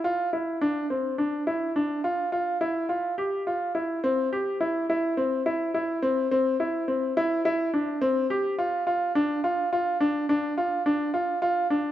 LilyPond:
\new Staff \with { instrumentName = "Grand piano" } { \time 7/4 \key c \mixolydian \tempo 4 = 106 f'8 e'8 d'8 c'8 d'8 e'8 d'8 f'8 f'8 e'8 f'8 g'8 f'8 e'8 | c'8 g'8 e'8 e'8 c'8 e'8 e'8 c'8 c'8 e'8 c'8 e'8 e'8 d'8 | c'8 g'8 f'8 f'8 d'8 f'8 f'8 d'8 d'8 f'8 d'8 f'8 f'8 d'8 | }